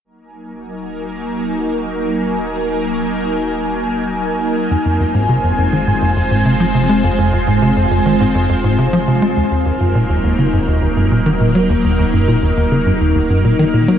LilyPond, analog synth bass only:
\new Staff \with { instrumentName = "Analog synth bass" } { \clef bass \time 4/4 \key ees \dorian \tempo 4 = 103 r1 | r1 | f,16 f,16 f,16 aes,16 c16 f,16 f,16 ees16 aes,16 f,16 f,16 aes,16 c16 f16 c16 aes16 | f,16 f,16 f,16 aes,16 c16 f,16 f,16 ees16 aes,16 f,16 f,16 aes,16 c16 f16 c16 aes16 |
ees,16 ees,16 ees,16 ges,16 bes,16 ees,16 ees,16 des16 ges,16 ees,16 ees,16 ges,16 bes,16 ees16 bes,16 ges16 | ees,16 ees,16 ees,16 ges,16 bes,16 ees,16 ees,16 des16 ges,16 ees,16 ees,16 ges,16 bes,16 ees16 bes,16 ges16 | }